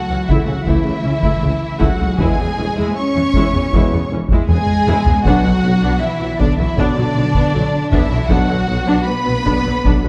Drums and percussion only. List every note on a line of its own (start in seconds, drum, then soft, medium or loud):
0.28 taiko medium
0.67 taiko medium
1.23 taiko medium
1.81 taiko medium
2.19 taiko medium
3.34 taiko medium
3.73 taiko medium
4.30 taiko medium
4.49 taiko low-mid medium
4.67 taiko low-mid medium
4.87 taiko low-mid medium
5.06 taiko low medium
5.25 taiko medium
6.40 taiko medium
6.78 taiko medium
7.34 taiko medium
7.92 taiko medium
8.30 taiko medium
9.46 taiko medium
9.85 taiko medium